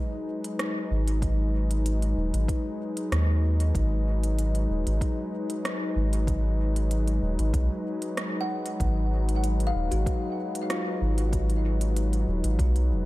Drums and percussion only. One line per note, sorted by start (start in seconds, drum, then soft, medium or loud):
0.44 closed hi-hat soft
0.59 cross-stick medium
0.59 closed hi-hat soft
1.08 closed hi-hat soft
1.22 kick loud
1.22 closed hi-hat soft
1.71 closed hi-hat soft
1.86 closed hi-hat soft
2.02 closed hi-hat soft
2.34 closed hi-hat soft
2.48 kick loud
2.48 closed hi-hat soft
2.97 closed hi-hat soft
3.12 cross-stick medium
3.12 closed hi-hat soft
3.60 closed hi-hat soft
3.75 kick medium
3.75 closed hi-hat soft
4.24 closed hi-hat soft
4.39 closed hi-hat soft
4.55 closed hi-hat soft
4.87 closed hi-hat soft
5.01 kick loud
5.01 closed hi-hat soft
5.50 closed hi-hat soft
5.65 cross-stick medium
5.65 closed hi-hat soft
6.13 closed hi-hat soft
6.27 kick loud
6.27 closed hi-hat soft
6.76 closed hi-hat soft
6.91 closed hi-hat soft
7.08 closed hi-hat soft
7.39 closed hi-hat soft
7.54 kick loud
7.54 closed hi-hat soft
8.02 closed hi-hat soft
8.17 cross-stick medium
8.17 closed hi-hat soft
8.66 closed hi-hat soft
8.80 kick medium
8.80 closed hi-hat soft
9.29 closed hi-hat soft
9.44 closed hi-hat soft
9.60 closed hi-hat soft
9.92 closed hi-hat soft
10.06 kick loud
10.06 closed hi-hat soft
10.55 closed hi-hat soft
10.70 cross-stick medium
10.70 closed hi-hat soft
11.18 closed hi-hat soft
11.33 kick loud
11.33 closed hi-hat medium
11.50 closed hi-hat soft
11.81 closed hi-hat soft
11.97 closed hi-hat medium
12.13 closed hi-hat soft
12.44 closed hi-hat soft
12.59 kick loud
12.59 closed hi-hat medium
12.76 closed hi-hat soft